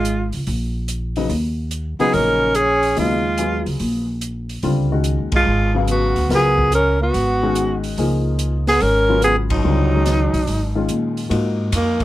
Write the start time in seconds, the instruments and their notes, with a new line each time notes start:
Already playing: upright bass G#1, tenor saxophone G#3, alto saxophone F4
0.05 closed hi-hat
0.33 upright bass C#2, open hi-hat
0.47 upright bass A#1, open hi-hat
0.88 closed hi-hat
1.16 grand piano C#3 F#3 B3 D#4, open hi-hat
1.30 upright bass D#2, open hi-hat
1.71 closed hi-hat
2.00 grand piano C#3 F#3 B3 D#4, tenor saxophone B3, alto saxophone G#4, muted upright bass stroke, open hi-hat
2.13 upright bass A#1, tenor saxophone C#4, alto saxophone A#4, open hi-hat
2.55 tenor saxophone C#4, alto saxophone G#4, closed hi-hat
2.83 open hi-hat
2.96 upright bass D#2, grand piano C#3 F#3 B3 D#4, tenor saxophone G#3, alto saxophone F4, open hi-hat
3.38 grand piano F#3 B3 F4 G#4, closed hi-hat
3.66 upright bass C#2, open hi-hat
3.79 upright bass A#1, open hi-hat
4.21 closed hi-hat
4.49 open hi-hat
4.63 upright bass C#2, grand piano D3 G3 C4 F4, open hi-hat
4.92 grand piano D#3 G#3 C#4 F#4
5.04 closed hi-hat
5.18 upright bass D#2
5.32 upright bass B1, tenor saxophone G#3, kick, ride
5.36 alto saxophone F4
5.46 upright bass G#1
5.75 grand piano C#3 F#3 B3 F5
5.88 tenor saxophone B3, alto saxophone F#4, closed hi-hat
6.16 upright bass D2, open hi-hat
6.29 upright bass C#2, grand piano F#3 B3 F4 A#4, tenor saxophone B3, snare, open hi-hat
6.35 alto saxophone G#4
6.58 kick
6.72 tenor saxophone C#4, alto saxophone A#4, closed hi-hat
7.01 tenor saxophone B3, alto saxophone F#4
7.14 upright bass G#1, open hi-hat
7.43 grand piano D#3 G#3 C#4 F#4
7.55 closed hi-hat
7.84 open hi-hat
7.98 upright bass C#2, grand piano F3 A#3 D#4 G#4, open hi-hat
8.39 closed hi-hat
8.67 tenor saxophone B3, alto saxophone G#4, snare, open hi-hat
8.80 upright bass G#1, tenor saxophone C#4, alto saxophone A#4, open hi-hat
9.09 grand piano C#3 F#3 B3 F4
9.22 tenor saxophone B3, alto saxophone G#4, closed hi-hat
9.50 tenor saxophone F#3, alto saxophone D#4, kick, ride
9.64 upright bass C#2, grand piano D3 G3 C4 F4
9.94 grand piano D#3 G#3 C#4 F#4
10.06 snare, closed hi-hat
10.34 upright bass B1, kick, open hi-hat
10.47 upright bass G#1, open hi-hat
10.75 grand piano D#3 G#3 C#4 F4
10.89 upright bass A#2, closed hi-hat
11.17 open hi-hat
11.29 upright bass G#2, grand piano A#3 D#4 F4 F#4, ride
11.72 upright bass F2, tenor saxophone A#3, hi-hat pedal, ride
12.00 kick, ride